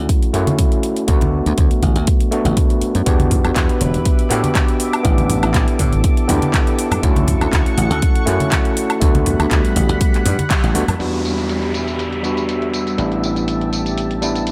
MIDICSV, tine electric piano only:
0, 0, Header, 1, 2, 480
1, 0, Start_track
1, 0, Tempo, 495868
1, 1048, Time_signature, 4, 2, 24, 8
1, 14052, End_track
2, 0, Start_track
2, 0, Title_t, "Tine electric piano"
2, 0, Program_c, 0, 4
2, 0, Note_on_c, 0, 57, 81
2, 0, Note_on_c, 0, 61, 77
2, 0, Note_on_c, 0, 64, 71
2, 0, Note_on_c, 0, 66, 89
2, 298, Note_off_c, 0, 57, 0
2, 301, Note_off_c, 0, 61, 0
2, 305, Note_off_c, 0, 64, 0
2, 308, Note_off_c, 0, 66, 0
2, 321, Note_on_c, 0, 57, 83
2, 327, Note_on_c, 0, 61, 75
2, 334, Note_on_c, 0, 64, 76
2, 339, Note_on_c, 0, 66, 90
2, 1018, Note_off_c, 0, 57, 0
2, 1021, Note_off_c, 0, 61, 0
2, 1025, Note_off_c, 0, 64, 0
2, 1027, Note_off_c, 0, 66, 0
2, 1039, Note_on_c, 0, 57, 82
2, 1045, Note_on_c, 0, 59, 78
2, 1051, Note_on_c, 0, 62, 75
2, 1058, Note_on_c, 0, 66, 92
2, 2217, Note_off_c, 0, 57, 0
2, 2220, Note_off_c, 0, 59, 0
2, 2223, Note_off_c, 0, 62, 0
2, 2227, Note_off_c, 0, 66, 0
2, 2238, Note_on_c, 0, 57, 82
2, 2244, Note_on_c, 0, 59, 79
2, 2252, Note_on_c, 0, 62, 78
2, 2256, Note_on_c, 0, 66, 92
2, 2937, Note_off_c, 0, 57, 0
2, 2940, Note_off_c, 0, 59, 0
2, 2943, Note_off_c, 0, 62, 0
2, 2946, Note_off_c, 0, 66, 0
2, 2961, Note_on_c, 0, 59, 81
2, 2965, Note_on_c, 0, 62, 75
2, 2972, Note_on_c, 0, 66, 77
2, 2979, Note_on_c, 0, 67, 91
2, 4138, Note_off_c, 0, 59, 0
2, 4140, Note_off_c, 0, 62, 0
2, 4144, Note_off_c, 0, 66, 0
2, 4147, Note_off_c, 0, 67, 0
2, 4159, Note_on_c, 0, 59, 85
2, 4167, Note_on_c, 0, 62, 80
2, 4173, Note_on_c, 0, 66, 77
2, 4178, Note_on_c, 0, 67, 94
2, 4857, Note_off_c, 0, 59, 0
2, 4861, Note_off_c, 0, 62, 0
2, 4864, Note_off_c, 0, 66, 0
2, 4867, Note_off_c, 0, 67, 0
2, 4874, Note_on_c, 0, 59, 83
2, 4880, Note_on_c, 0, 62, 76
2, 4887, Note_on_c, 0, 64, 80
2, 4893, Note_on_c, 0, 67, 88
2, 6054, Note_off_c, 0, 59, 0
2, 6058, Note_off_c, 0, 62, 0
2, 6061, Note_off_c, 0, 64, 0
2, 6064, Note_off_c, 0, 67, 0
2, 6077, Note_on_c, 0, 59, 88
2, 6082, Note_on_c, 0, 62, 81
2, 6090, Note_on_c, 0, 64, 79
2, 6096, Note_on_c, 0, 67, 96
2, 6776, Note_off_c, 0, 59, 0
2, 6779, Note_off_c, 0, 62, 0
2, 6782, Note_off_c, 0, 64, 0
2, 6785, Note_off_c, 0, 67, 0
2, 6797, Note_on_c, 0, 57, 85
2, 6804, Note_on_c, 0, 61, 80
2, 6809, Note_on_c, 0, 64, 76
2, 6816, Note_on_c, 0, 66, 94
2, 7976, Note_off_c, 0, 57, 0
2, 7979, Note_off_c, 0, 61, 0
2, 7982, Note_off_c, 0, 64, 0
2, 7986, Note_off_c, 0, 66, 0
2, 7995, Note_on_c, 0, 57, 88
2, 8003, Note_on_c, 0, 61, 79
2, 8008, Note_on_c, 0, 64, 80
2, 8015, Note_on_c, 0, 66, 96
2, 8695, Note_off_c, 0, 57, 0
2, 8699, Note_off_c, 0, 61, 0
2, 8702, Note_off_c, 0, 64, 0
2, 8705, Note_off_c, 0, 66, 0
2, 8717, Note_on_c, 0, 57, 82
2, 8723, Note_on_c, 0, 59, 78
2, 8730, Note_on_c, 0, 62, 81
2, 8735, Note_on_c, 0, 66, 95
2, 9896, Note_off_c, 0, 57, 0
2, 9899, Note_off_c, 0, 59, 0
2, 9903, Note_off_c, 0, 62, 0
2, 9905, Note_off_c, 0, 66, 0
2, 10401, Note_on_c, 0, 57, 84
2, 10405, Note_on_c, 0, 59, 80
2, 10409, Note_on_c, 0, 62, 81
2, 10411, Note_on_c, 0, 66, 95
2, 10487, Note_off_c, 0, 57, 0
2, 10489, Note_off_c, 0, 59, 0
2, 10491, Note_off_c, 0, 62, 0
2, 10492, Note_off_c, 0, 66, 0
2, 10639, Note_on_c, 0, 55, 76
2, 10645, Note_on_c, 0, 59, 70
2, 10651, Note_on_c, 0, 62, 70
2, 10657, Note_on_c, 0, 66, 83
2, 11817, Note_off_c, 0, 55, 0
2, 11820, Note_off_c, 0, 59, 0
2, 11823, Note_off_c, 0, 62, 0
2, 11826, Note_off_c, 0, 66, 0
2, 11839, Note_on_c, 0, 55, 77
2, 11846, Note_on_c, 0, 59, 72
2, 11853, Note_on_c, 0, 62, 69
2, 11860, Note_on_c, 0, 66, 87
2, 12537, Note_off_c, 0, 55, 0
2, 12540, Note_off_c, 0, 59, 0
2, 12544, Note_off_c, 0, 62, 0
2, 12547, Note_off_c, 0, 66, 0
2, 12562, Note_on_c, 0, 55, 78
2, 12569, Note_on_c, 0, 59, 71
2, 12575, Note_on_c, 0, 62, 73
2, 12580, Note_on_c, 0, 64, 87
2, 13739, Note_off_c, 0, 55, 0
2, 13742, Note_off_c, 0, 59, 0
2, 13745, Note_off_c, 0, 62, 0
2, 13747, Note_off_c, 0, 64, 0
2, 13759, Note_on_c, 0, 55, 77
2, 13765, Note_on_c, 0, 59, 72
2, 13771, Note_on_c, 0, 62, 69
2, 13778, Note_on_c, 0, 64, 87
2, 14052, Note_off_c, 0, 55, 0
2, 14052, Note_off_c, 0, 59, 0
2, 14052, Note_off_c, 0, 62, 0
2, 14052, Note_off_c, 0, 64, 0
2, 14052, End_track
0, 0, End_of_file